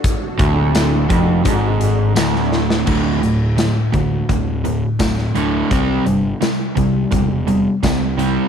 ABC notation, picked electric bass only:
X:1
M:4/4
L:1/8
Q:1/4=85
K:D
V:1 name="Picked electric bass" clef=bass
z D,,,2 =F,,, ^G,,,2 D,,,2 | [K:Clyd] D,,,3 D,, D,,,2 D,,, D,,, | C,, G,,, z C,, E,,,2 C,,2 |]